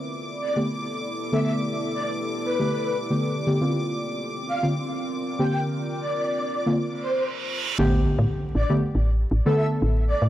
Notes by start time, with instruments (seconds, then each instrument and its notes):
Already playing: synth stab D3 A3 B3 B4, ambient pad B3 E4 G4 A4 D5, analog synth pad E4 D5, violin section D6
0.12 analog synth pad A4
0.41 soft synth lead D5
0.56 synth stab D3 A3 B3 G4
1.32 synth stab D3 A3 B3 A4, soft synth lead E5
1.43 soft synth lead E5
1.94 soft synth lead D5
2.45 soft synth lead B4
2.59 synth stab D3 A3 B3 G4
3.10 synth stab D3 A3 B3 G4
3.46 synth stab D3 A3 B3 G4
3.61 synth stab D3 A#3 C4 F4
3.72 ambient pad C4 F4 A#4, analog synth pad C4
3.94 analog synth pad F4
4.48 soft synth lead F5
4.63 synth stab D3 A#3 C4 F4
4.85 analog synth pad A#4
5.39 synth stab D3 A#3 C4 G4, soft synth lead G5
5.50 soft synth lead G5
6.01 soft synth lead D5
6.66 synth stab D3 A#3 C4 F4
6.77 reverse cymbal
7.02 soft synth lead C5
7.79 fm bass A1, synth stab D3 A3 B3 G4, impact
8.19 fm bass A2
8.55 fm bass A1, soft synth lead D5
8.69 synth stab D3 A3 B3 G4
8.95 fm bass A1
9.31 fm bass A1
9.45 synth stab D3 A3 B3 A4, soft synth lead E5
9.57 soft synth lead E5
9.82 fm bass A1
10.08 soft synth lead D5
10.22 fm bass A2